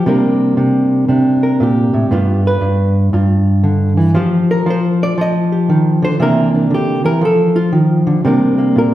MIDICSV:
0, 0, Header, 1, 2, 480
1, 0, Start_track
1, 0, Tempo, 511073
1, 49, Time_signature, 4, 2, 24, 8
1, 8397, End_track
2, 0, Start_track
2, 0, Title_t, "Hollow-body jazz guitar"
2, 0, Program_c, 0, 26
2, 58, Note_on_c, 0, 48, 76
2, 66, Note_on_c, 0, 55, 51
2, 72, Note_on_c, 0, 58, 48
2, 80, Note_on_c, 0, 62, 46
2, 86, Note_on_c, 0, 70, 53
2, 525, Note_off_c, 0, 48, 0
2, 536, Note_on_c, 0, 48, 64
2, 1007, Note_off_c, 0, 48, 0
2, 1019, Note_on_c, 0, 48, 65
2, 1023, Note_off_c, 0, 62, 0
2, 1027, Note_on_c, 0, 62, 49
2, 1332, Note_off_c, 0, 70, 0
2, 1344, Note_on_c, 0, 70, 49
2, 1499, Note_off_c, 0, 70, 0
2, 1504, Note_on_c, 0, 46, 68
2, 1530, Note_on_c, 0, 67, 59
2, 1813, Note_off_c, 0, 46, 0
2, 1817, Note_on_c, 0, 45, 56
2, 1976, Note_off_c, 0, 45, 0
2, 1976, Note_off_c, 0, 48, 0
2, 1980, Note_off_c, 0, 62, 0
2, 1980, Note_on_c, 0, 43, 78
2, 1983, Note_off_c, 0, 58, 0
2, 1984, Note_off_c, 0, 55, 0
2, 1988, Note_on_c, 0, 55, 46
2, 1993, Note_on_c, 0, 59, 53
2, 1999, Note_on_c, 0, 65, 56
2, 2308, Note_off_c, 0, 67, 0
2, 2321, Note_on_c, 0, 71, 89
2, 2440, Note_off_c, 0, 43, 0
2, 2452, Note_on_c, 0, 43, 73
2, 2929, Note_off_c, 0, 43, 0
2, 2940, Note_on_c, 0, 43, 68
2, 2944, Note_off_c, 0, 65, 0
2, 2948, Note_off_c, 0, 71, 0
2, 2948, Note_on_c, 0, 65, 44
2, 3414, Note_on_c, 0, 50, 61
2, 3727, Note_off_c, 0, 50, 0
2, 3731, Note_on_c, 0, 52, 64
2, 3881, Note_off_c, 0, 65, 0
2, 3883, Note_off_c, 0, 59, 0
2, 3890, Note_off_c, 0, 55, 0
2, 3893, Note_off_c, 0, 52, 0
2, 3893, Note_on_c, 0, 53, 83
2, 3897, Note_off_c, 0, 43, 0
2, 3900, Note_on_c, 0, 65, 54
2, 3905, Note_on_c, 0, 67, 51
2, 3913, Note_on_c, 0, 72, 48
2, 4231, Note_off_c, 0, 67, 0
2, 4235, Note_on_c, 0, 70, 88
2, 4367, Note_off_c, 0, 53, 0
2, 4378, Note_on_c, 0, 53, 76
2, 4385, Note_off_c, 0, 70, 0
2, 4414, Note_off_c, 0, 72, 0
2, 4418, Note_on_c, 0, 72, 79
2, 4712, Note_off_c, 0, 72, 0
2, 4725, Note_on_c, 0, 74, 100
2, 4851, Note_off_c, 0, 53, 0
2, 4862, Note_on_c, 0, 53, 74
2, 4870, Note_off_c, 0, 74, 0
2, 4896, Note_on_c, 0, 75, 102
2, 5187, Note_on_c, 0, 67, 51
2, 5349, Note_on_c, 0, 51, 63
2, 5653, Note_off_c, 0, 51, 0
2, 5657, Note_on_c, 0, 50, 61
2, 5671, Note_off_c, 0, 75, 0
2, 5678, Note_on_c, 0, 72, 96
2, 5797, Note_off_c, 0, 65, 0
2, 5816, Note_off_c, 0, 50, 0
2, 5817, Note_off_c, 0, 53, 0
2, 5819, Note_on_c, 0, 48, 79
2, 5824, Note_on_c, 0, 52, 59
2, 5827, Note_off_c, 0, 72, 0
2, 5831, Note_on_c, 0, 58, 59
2, 5833, Note_off_c, 0, 67, 0
2, 5836, Note_on_c, 0, 62, 55
2, 5846, Note_on_c, 0, 70, 85
2, 6135, Note_off_c, 0, 62, 0
2, 6146, Note_off_c, 0, 70, 0
2, 6146, Note_on_c, 0, 62, 46
2, 6293, Note_off_c, 0, 52, 0
2, 6296, Note_on_c, 0, 50, 62
2, 6301, Note_off_c, 0, 62, 0
2, 6334, Note_on_c, 0, 67, 76
2, 6611, Note_off_c, 0, 50, 0
2, 6615, Note_on_c, 0, 52, 70
2, 6623, Note_off_c, 0, 67, 0
2, 6627, Note_on_c, 0, 70, 103
2, 6756, Note_off_c, 0, 48, 0
2, 6775, Note_off_c, 0, 52, 0
2, 6775, Note_on_c, 0, 53, 75
2, 6781, Note_off_c, 0, 58, 0
2, 6781, Note_off_c, 0, 70, 0
2, 6810, Note_on_c, 0, 69, 88
2, 7099, Note_on_c, 0, 65, 88
2, 7108, Note_off_c, 0, 69, 0
2, 7255, Note_on_c, 0, 51, 66
2, 7257, Note_off_c, 0, 65, 0
2, 7571, Note_off_c, 0, 51, 0
2, 7577, Note_on_c, 0, 50, 64
2, 7733, Note_off_c, 0, 53, 0
2, 7736, Note_off_c, 0, 50, 0
2, 7745, Note_on_c, 0, 48, 79
2, 7753, Note_on_c, 0, 55, 53
2, 7758, Note_on_c, 0, 58, 53
2, 7763, Note_on_c, 0, 62, 55
2, 7772, Note_on_c, 0, 70, 56
2, 8052, Note_off_c, 0, 58, 0
2, 8063, Note_on_c, 0, 58, 50
2, 8224, Note_on_c, 0, 46, 68
2, 8232, Note_off_c, 0, 70, 0
2, 8250, Note_on_c, 0, 70, 87
2, 8397, Note_off_c, 0, 46, 0
2, 8397, Note_off_c, 0, 48, 0
2, 8397, Note_off_c, 0, 55, 0
2, 8397, Note_off_c, 0, 58, 0
2, 8397, Note_off_c, 0, 62, 0
2, 8397, Note_off_c, 0, 70, 0
2, 8397, End_track
0, 0, End_of_file